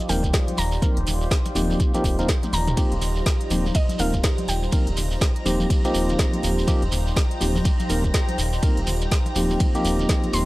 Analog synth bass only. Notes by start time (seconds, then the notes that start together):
0.09 D#1
0.58 D#1
0.97 D#1
1.07 D#1
1.55 D#1
2.04 D#1
2.53 D#1
2.92 D#1
3.02 D#1
3.51 D#1
3.99 D#1
4.48 D#1
4.87 D#1
4.97 D#1
5.46 D#1
5.94 D#1
6.43 D#1
6.82 D#1
6.92 D#1
7.41 D#1
7.90 D#1
8.38 D#1
8.77 D#1
8.87 D#1
9.36 D#1
9.85 D#1
10.33 D#1